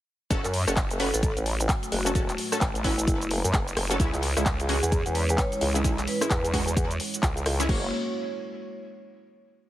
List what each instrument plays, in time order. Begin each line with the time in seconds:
0.30 wobble bass F#1, analog synth pad A3 F#4 C#5, synth stab C#4 F#4 A4, kick, closed hi-hat, cabasa
0.44 wobble bass F#2, clap, closed hi-hat, cabasa
0.54 open hi-hat
0.67 wobble bass F#1, synth stab C#4 F#4 A4, cross-stick, closed hi-hat, cabasa
0.77 kick, clap, closed hi-hat, cabasa
0.91 closed hi-hat, cabasa
1.00 synth stab C#4 F#4 B4, vibraphone A4, open hi-hat
1.14 wobble bass A1, vibraphone A4, closed hi-hat, cabasa
1.23 kick, closed hi-hat, cabasa
1.37 wobble bass A1, closed hi-hat, cabasa
1.46 open hi-hat
1.60 closed hi-hat, cabasa
1.69 kick, clap, closed hi-hat, cabasa
1.83 closed hi-hat, cabasa
1.92 wobble bass F#1, vibraphone F#4, open hi-hat
2.06 synth stab C#4 F#4 A4, vibraphone F#4, closed hi-hat, cabasa
2.15 wobble bass E1, synth stab C#4 F#4 A4, analog synth pad B4, kick, closed hi-hat, cabasa
2.29 clap, closed hi-hat, cabasa
2.38 open hi-hat
2.52 synth stab C#4 F#4 A4, cross-stick, closed hi-hat, cabasa
2.61 wobble bass A1, kick, clap, closed hi-hat, cabasa
2.75 closed hi-hat, cabasa
2.84 synth stab C#4 F#4 B4, vibraphone E4, kick, open hi-hat
2.98 closed hi-hat, cabasa
3.07 wobble bass F#1, kick, closed hi-hat, cabasa
3.21 closed hi-hat, cabasa
3.31 open hi-hat
3.44 wobble bass F#2, closed hi-hat, cabasa
3.53 wobble bass F#1, kick, clap, closed hi-hat, cabasa
3.68 closed hi-hat, cabasa
3.77 wobble bass F#1, cross-stick, open hi-hat
3.91 synth stab C#4 F#4 A4, closed hi-hat, cabasa
4.00 wobble bass C#2, synth stab G#3 C#4 E4, analog synth pad G#3 E4 C#5, kick, closed hi-hat, cabasa
4.13 wobble bass C#2, clap, closed hi-hat, cabasa
4.23 open hi-hat
4.37 wobble bass C#2, synth stab G#3 C#4 E4, cross-stick, closed hi-hat, cabasa
4.46 kick, clap, closed hi-hat, cabasa
4.60 closed hi-hat, cabasa
4.69 synth stab G#3 C#4 F#4, vibraphone G#4, open hi-hat
4.83 wobble bass E2, vibraphone G#4, closed hi-hat, cabasa
4.92 kick, closed hi-hat, cabasa
5.06 wobble bass E2, closed hi-hat, cabasa
5.15 vibraphone B4, open hi-hat
5.29 vibraphone B4, closed hi-hat, cabasa
5.38 vibraphone C#5, kick, clap, closed hi-hat, cabasa
5.52 vibraphone C#5, closed hi-hat, cabasa
5.61 wobble bass C#2, open hi-hat
5.75 synth stab G#3 C#4 E4, closed hi-hat, cabasa
5.84 wobble bass B1, synth stab G#3 C#4 E4, kick, closed hi-hat, cabasa
5.98 clap, closed hi-hat, cabasa
6.07 vibraphone B4, open hi-hat
6.21 synth stab G#3 C#4 E4, cross-stick, closed hi-hat, cabasa
6.30 wobble bass E2, kick, clap, closed hi-hat, cabasa
6.45 closed hi-hat, cabasa
6.53 synth stab G#3 C#4 F#4, kick, open hi-hat
6.68 closed hi-hat, cabasa
6.76 wobble bass E2, kick, closed hi-hat, cabasa
6.91 closed hi-hat, cabasa
7.00 open hi-hat
7.14 closed hi-hat, cabasa
7.23 wobble bass C#2, kick, clap, closed hi-hat, cabasa
7.37 closed hi-hat, cabasa
7.46 wobble bass C#2, cross-stick, open hi-hat
7.60 synth stab G#3 C#4 E4, closed hi-hat, cabasa
7.69 wobble bass F#1, analog synth pad A#3 F#4 C#5, synth stab A#3 F#4 C#5, kick, crash